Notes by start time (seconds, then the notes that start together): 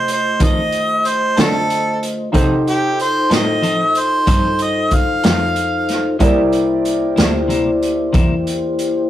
Already playing: C3 A3 F4 G4 A4 C5 D#5
0.08 closed hi-hat
0.12 C5
0.40 D#3 F3 C4 D#4 A4, kick, closed hi-hat
0.44 D#5
0.72 closed hi-hat
1.05 C5, closed hi-hat
1.37 D3 C4 D#4 A4, snare, closed hi-hat
1.41 A4
1.70 closed hi-hat
2.03 closed hi-hat
2.32 C3 F3 C4 D#4 F4 G4 A4 C5, kick, closed hi-hat
2.68 G4, closed hi-hat
3.00 C5, closed hi-hat
3.30 A2 C4 D#4 A4 D#5, snare, closed hi-hat
3.62 F3 C4 D#4 A4, closed hi-hat
3.95 C5, closed hi-hat
4.26 G2 F3 C4 D#4 A4, kick, closed hi-hat
4.59 D#5, closed hi-hat
4.91 F5, kick, closed hi-hat
5.24 F2 C4 D#4 A4, snare, closed hi-hat
5.56 closed hi-hat
5.89 snare, closed hi-hat
6.19 C2 C3 G3 A#3 E4 G4 A#4 C5 D5, kick, closed hi-hat
6.53 closed hi-hat
6.85 closed hi-hat
7.16 D2 G3 A#3 E4, snare, closed hi-hat
7.48 C3 G3 A#3 E4, closed hi-hat
7.83 closed hi-hat
8.13 E2 C3 G3 A#3 E4, kick, closed hi-hat
8.47 closed hi-hat
8.79 closed hi-hat